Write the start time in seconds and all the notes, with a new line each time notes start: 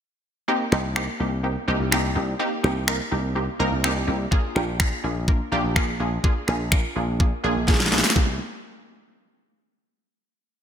0.48 A#3 C4 D#4 G4
0.72 C2 A#3 C4 D#4 G4, finger snap
0.96 A#3 C4 D#4 G4, finger snap
1.20 C2 A#3 C4 D#4 G4
1.43 A#3 C4 D#4 G4
1.68 C2 A#3 C4 D#4 G4
1.80 C2
1.91 C2 A#3 C4 D#4 G4, finger snap
2.15 C2 A#3 C4 D#4 G4
2.39 A#3 C4 D#4 G4
2.63 C2 A#3 C4 D#4 G4, finger snap
2.87 A#3 C4 D#4 A#4, finger snap
3.11 C2 A#3 C4 D#4 G4
3.35 A#3 C4 D#4 G4
3.59 C2 A#3 C4 D#4 A#4
3.72 C2
3.84 C2 A#3 C4 D#4 G4, finger snap
4.07 C2 A#3 C4 D#4 G4
4.31 A#3 D4 F4 G#4, kick
4.55 A#1 A#3 D4 F4 G4, finger snap
4.80 A#3 D4 F4 G#4, finger snap, kick
5.04 A#1 A#3 D4 F4 G#4
5.28 A#3 D4 F4 A#4, kick
5.52 A#1 A#3 D4 F4 G4
5.64 A#1
5.76 A#3 D4 F4 G#4, finger snap, kick
6.00 A#1 A#3 D4 F4 G#4
6.24 A#3 D4 F4 G#4, kick
6.48 A#1 A#3 D4 F4 G#4, finger snap
6.72 A#3 D4 F4 A#4, finger snap, kick
6.96 A#1 A#3 D4 F4 G#4
7.20 A#3 D4 F4 G#4, kick
7.44 A#1 A#3 D4 F4 G#4
7.56 A#1
7.67 A#1 A#3 D4 F4 G#4, kick, snare
7.74 snare
7.80 snare
7.86 snare
7.92 A#1 A#3 D4 F4 G#4, snare
7.98 snare
8.04 snare
8.10 snare
8.16 C2 A#3 C4 D#4 G4, kick